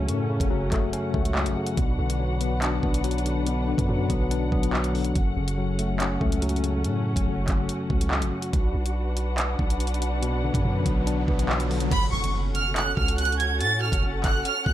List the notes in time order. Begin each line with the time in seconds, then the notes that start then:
Already playing: F#2 C#3 F#3 A3 C#4 F#4 A4 F#5
0.08 F#2 A2, closed hi-hat
0.29 C#3
0.40 F#1, kick, closed hi-hat
0.50 F#1 F#3
0.72 F#1 A3, kick, clap, closed hi-hat
0.93 C#4, closed hi-hat
1.14 C#2 A3, kick
1.25 closed hi-hat
1.35 F#3, clap
1.46 A1, closed hi-hat
1.56 C#3
1.67 closed hi-hat
1.77 B1 B2 D4 B4, kick, closed hi-hat
1.98 B1 D3
2.10 closed hi-hat
2.20 F#3
2.41 B3, closed hi-hat
2.62 D4, clap, closed hi-hat
2.83 B1 B3, kick
2.94 closed hi-hat
3.04 F#3, closed hi-hat
3.11 closed hi-hat
3.18 closed hi-hat
3.25 D3, closed hi-hat
3.46 B2, closed hi-hat
3.68 D3
3.78 F#2, kick, closed hi-hat
3.89 F#2 F#3
4.10 B1 B3, kick, closed hi-hat
4.31 D4, closed hi-hat
4.52 B1 B3, kick
4.63 closed hi-hat
4.73 F#3, clap
4.84 closed hi-hat
4.94 D3, open hi-hat
5.05 closed hi-hat
5.15 F#1 F#2 C#4 F#4 A4, kick, closed hi-hat
5.37 F#1 C#3
5.48 closed hi-hat
5.58 F#3
5.79 A3, closed hi-hat
6.00 C#4, clap, closed hi-hat
6.21 C#2 A3, kick
6.32 closed hi-hat
6.42 F#3, closed hi-hat
6.49 closed hi-hat
6.56 closed hi-hat
6.63 C#3, closed hi-hat
6.84 A2, closed hi-hat
7.16 F#1, kick, closed hi-hat
7.27 F#1
7.48 F#1, kick, clap, closed hi-hat
7.69 closed hi-hat
7.90 C#2, kick
8.01 closed hi-hat
8.11 clap
8.22 A1, closed hi-hat
8.42 closed hi-hat
8.53 B1 D4 B4 F#5, kick, closed hi-hat, riser
8.75 B1
8.86 closed hi-hat
9.17 closed hi-hat
9.38 clap, closed hi-hat
9.59 B1, kick
9.70 closed hi-hat
9.80 closed hi-hat
9.87 closed hi-hat
9.94 closed hi-hat
10.02 closed hi-hat
10.22 B2, closed hi-hat
10.44 D3
10.54 F#2, kick, closed hi-hat
10.65 F#2 F#3
10.86 B1 B3, kick, closed hi-hat
11.07 D4, closed hi-hat
11.28 B1 B3, kick
11.39 closed hi-hat
11.49 F#3, clap
11.60 closed hi-hat
11.70 D3, open hi-hat
11.80 closed hi-hat
11.91 F#1 C#4 F#4 A4 F#5 B5, kick, closed hi-hat, crash, impact
12.13 F#1 C#6
12.24 closed hi-hat
12.55 F6, closed hi-hat
12.76 F#6, clap, closed hi-hat
12.97 C#2 F6, kick
13.08 closed hi-hat
13.18 F#6, closed hi-hat
13.25 closed hi-hat
13.32 closed hi-hat
13.39 G#6, closed hi-hat
13.60 A2 A6, closed hi-hat
13.82 F6
13.92 F#1, kick, closed hi-hat
14.03 F#1
14.24 F#1 F#6, kick, clap, closed hi-hat
14.45 F6, closed hi-hat
14.66 C#2 F#6, kick